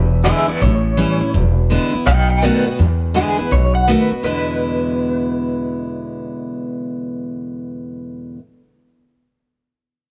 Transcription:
Already playing: upright bass E1, steel-string acoustic guitar E2
0.24 steel-string acoustic guitar D3 G#3 B3 E4, clean electric guitar G#4 E5
0.48 steel-string acoustic guitar B3 E4, clean electric guitar B4 D5, muted upright bass stroke
0.62 upright bass A1, steel-string acoustic guitar A2, clean electric guitar C#5
0.97 steel-string acoustic guitar E3 G3 C#4 E4
1.21 steel-string acoustic guitar C#4 E4, muted upright bass stroke
1.34 upright bass E1, steel-string acoustic guitar E2
1.70 steel-string acoustic guitar D3 G#3 B3 E4
1.93 steel-string acoustic guitar B3 E4, muted upright bass stroke
2.06 upright bass B1, steel-string acoustic guitar B2, clean electric guitar D#5 G5
2.30 clean electric guitar D#5 G5
2.42 steel-string acoustic guitar D#3 A3 B3 F#4, clean electric guitar B4 D5
2.65 steel-string acoustic guitar B3 F#4, clean electric guitar B4, muted upright bass stroke
2.79 steel-string acoustic guitar E2, upright bass E2
3.14 steel-string acoustic guitar D3 G#3 B3 E4, clean electric guitar G#4
3.39 steel-string acoustic guitar B3 E4, clean electric guitar B4, muted upright bass stroke
3.51 upright bass B1, steel-string acoustic guitar B2, clean electric guitar C#5
3.75 clean electric guitar F#5
3.88 steel-string acoustic guitar D#3 A3 B3 F#4, clean electric guitar B4
4.11 steel-string acoustic guitar B3 F#4, muted upright bass stroke
4.23 steel-string acoustic guitar E2 B2 D3 G#3 B3 E4, upright bass E2, clean electric guitar B4

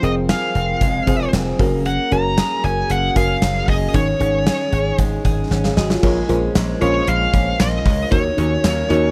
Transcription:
Already playing: clean electric guitar F3 G#4, fm electric piano C4 F4 G#4 C5
0.02 slap bass F1, fm electric piano C4 F4 G#4 A#4, clean electric guitar C4, lead electric guitar D#5, closed hi-hat
0.29 clean electric guitar G#4, lead electric guitar F5, snare, closed hi-hat
0.55 slap bass F1, clean electric guitar C4, closed hi-hat
0.81 slap bass F1, clean electric guitar G#3, kick, closed hi-hat
1.07 slap bass F1, fm electric piano C4 F4 G#4 C5, clean electric guitar G#4, kick, closed hi-hat
1.33 slap bass F1, clean electric guitar C4, snare, closed hi-hat
1.59 slap bass F#1, clean electric guitar A#3, fm electric piano C#4 F#4 G#4 A#4, kick, open hi-hat
1.85 clean electric guitar A#3, lead electric guitar F#5, closed hi-hat
2.11 slap bass F#1, fm electric piano C#4 F#4 G#4 A#4, clean electric guitar C#4, lead electric guitar A#5, closed hi-hat
2.37 clean electric guitar G#4, snare, closed hi-hat
2.64 slap bass F#1, clean electric guitar C#4, lead electric guitar G#5, closed hi-hat
2.90 slap bass F#1, clean electric guitar A#3, lead electric guitar F#5, closed hi-hat
3.16 slap bass F#1, fm electric piano C#4 F#4 G#4 A#4, clean electric guitar G#4, lead electric guitar F5, kick, closed hi-hat
3.42 slap bass F#1, clean electric guitar C#4, snare, closed hi-hat
3.68 slap bass F#1, clean electric guitar G#4, lead electric guitar D#5, kick, open hi-hat
3.94 slap bass G#1, clean electric guitar D#3, fm electric piano C#4 D#4 G#4 C#5, lead electric guitar C#5, kick, closed hi-hat
4.20 slap bass G#1, fm electric piano C#4 D#4 G#4 C#5, clean electric guitar C#4, closed hi-hat
4.46 clean electric guitar G#4, snare, closed hi-hat
4.72 slap bass G#1, clean electric guitar C#4, closed hi-hat
4.98 slap bass G#1, clean electric guitar G#3, kick, closed hi-hat
5.25 slap bass G#1, clean electric guitar G#4, kick, closed hi-hat
5.51 slap bass G#1, clean electric guitar C#4, snare
5.64 fm electric piano G#4 F5, snare
5.77 slap bass G#1, fm electric piano F#4 D#5, clean electric guitar G#4, snare
5.90 fm electric piano F4 C#5, snare
6.02 slap bass A#1, clean electric guitar G#3, fm electric piano F4 G#4 A#4 C#5, kick, crash
6.28 slap bass A#1, clean electric guitar C#4, fm electric piano F4 G#4 A#4 C5, closed hi-hat
6.55 slap bass A#1, clean electric guitar G#3, snare, closed hi-hat, tambourine
6.81 slap bass A#1, analog polysynth C#4 F4 G#4, clean electric guitar C#4, fm electric piano F4 G#4 A#4 C#5, lead electric guitar C#5, closed hi-hat
7.07 slap bass A#1, clean electric guitar G#3, lead electric guitar F5, closed hi-hat
7.33 slap bass A#1, clean electric guitar C#4, kick, closed hi-hat
7.59 slap bass A#1, clean electric guitar F4, lead electric guitar D#5, snare, closed hi-hat, tambourine
7.86 slap bass C#2, clean electric guitar G#3, kick, open hi-hat
8.11 slap bass D#2, clean electric guitar D#3, fm electric piano D#4 F#4 A#4 C#5, lead electric guitar C#5, kick, closed hi-hat
8.37 slap bass D#2, clean electric guitar C#4, fm electric piano D#4 F#4 A#4 C#5, closed hi-hat
8.64 slap bass D#2, clean electric guitar A#3, snare, closed hi-hat, tambourine
8.89 slap bass D#2, clean electric guitar C#4, fm electric piano D#4 F#4 A#4 D#5, closed hi-hat

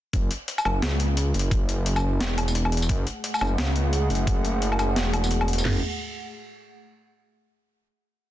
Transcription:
0.13 detuned saw bass F#1, kick, closed hi-hat
0.31 closed hi-hat
0.48 closed hi-hat
0.58 tambourine, low woodblock
0.65 detuned saw bass F#1, low woodblock
0.82 detuned saw bass C#2, snare, closed hi-hat
1.00 closed hi-hat
1.17 closed hi-hat
1.34 detuned saw bass F#1, closed hi-hat
1.39 closed hi-hat
1.51 kick, closed hi-hat
1.69 closed hi-hat
1.86 closed hi-hat
1.96 tambourine, low woodblock
2.03 detuned saw bass F#1
2.20 detuned saw bass E1, snare, closed hi-hat
2.38 closed hi-hat, low woodblock
2.48 tambourine
2.55 closed hi-hat
2.65 low woodblock
2.72 closed hi-hat
2.77 closed hi-hat
2.82 tambourine
2.89 detuned saw bass F#1, analog synth pad A3 G#4 F#5, kick, closed hi-hat
3.07 closed hi-hat
3.24 closed hi-hat
3.34 tambourine, low woodblock
3.39 detuned saw bass F#1, tambourine
3.41 tambourine, low woodblock
3.45 tambourine
3.47 tambourine
3.58 detuned saw bass C#2, snare, closed hi-hat
3.76 closed hi-hat
3.93 closed hi-hat
4.10 detuned saw bass F#1, closed hi-hat
4.15 closed hi-hat
4.27 kick, closed hi-hat
4.45 closed hi-hat
4.62 closed hi-hat
4.72 low woodblock
4.79 detuned saw bass F#1, closed hi-hat, tambourine, low woodblock
4.96 detuned saw bass E1, snare, closed hi-hat
5.13 closed hi-hat, low woodblock
5.24 tambourine
5.31 closed hi-hat
5.41 low woodblock
5.48 closed hi-hat
5.53 closed hi-hat
5.58 tambourine
5.65 detuned saw bass F#1, snare, floor tom, crash

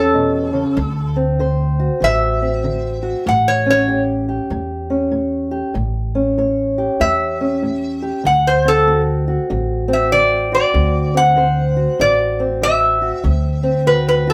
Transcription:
Already playing: upright bass E2, steel-string acoustic guitar C#4 G4, resonator guitar played with a steel bar A4
0.14 steel-string acoustic guitar B2
0.53 steel-string acoustic guitar C#3
0.76 upright bass D2, steel-string acoustic guitar D3
1.16 steel-string acoustic guitar C4
1.39 steel-string acoustic guitar D3 C5
1.79 steel-string acoustic guitar F#4
2.00 upright bass A1, steel-string acoustic guitar D3, resonator guitar played with a steel bar E5
2.42 steel-string acoustic guitar C4
2.64 steel-string acoustic guitar D3
3.03 steel-string acoustic guitar F#4
3.26 upright bass A1, steel-string acoustic guitar A2, resonator guitar played with a steel bar F#5
3.48 resonator guitar played with a steel bar C#5
3.66 steel-string acoustic guitar C#4
3.70 resonator guitar played with a steel bar C#5
3.88 steel-string acoustic guitar A2 G4
4.29 steel-string acoustic guitar G4
4.50 upright bass E2, steel-string acoustic guitar A2
4.90 steel-string acoustic guitar C#4
5.11 steel-string acoustic guitar A2
5.51 steel-string acoustic guitar G4
5.74 upright bass A1, steel-string acoustic guitar A2
6.15 steel-string acoustic guitar C#4
6.38 steel-string acoustic guitar A2 C#5
6.78 steel-string acoustic guitar G4
7.00 upright bass E2, steel-string acoustic guitar A2, resonator guitar played with a steel bar E5
7.41 steel-string acoustic guitar C#4
7.63 steel-string acoustic guitar A2
8.02 steel-string acoustic guitar G4
8.24 upright bass D2, steel-string acoustic guitar D3, resonator guitar played with a steel bar F#5
8.47 resonator guitar played with a steel bar C5
8.65 steel-string acoustic guitar C4, resonator guitar played with a steel bar A4
8.87 steel-string acoustic guitar D3 F#4
9.28 steel-string acoustic guitar F#4
9.50 upright bass A1, steel-string acoustic guitar D3
9.88 steel-string acoustic guitar C4
9.93 resonator guitar played with a steel bar E5
10.12 steel-string acoustic guitar D3, resonator guitar played with a steel bar D5
10.52 steel-string acoustic guitar F#4, resonator guitar played with a steel bar D5
10.74 upright bass D2, steel-string acoustic guitar D3
11.14 steel-string acoustic guitar C4, resonator guitar played with a steel bar F#5
11.36 steel-string acoustic guitar D3 C5
11.77 steel-string acoustic guitar F#4
11.99 upright bass A1, steel-string acoustic guitar D3, resonator guitar played with a steel bar D5
12.40 steel-string acoustic guitar C4
12.62 steel-string acoustic guitar D3, resonator guitar played with a steel bar E5
13.02 steel-string acoustic guitar F#4
13.23 upright bass D2, steel-string acoustic guitar D3
13.63 steel-string acoustic guitar C4
13.86 steel-string acoustic guitar D3 F#4, resonator guitar played with a steel bar B4
14.08 resonator guitar played with a steel bar B4
14.27 steel-string acoustic guitar F#4, resonator guitar played with a steel bar A4

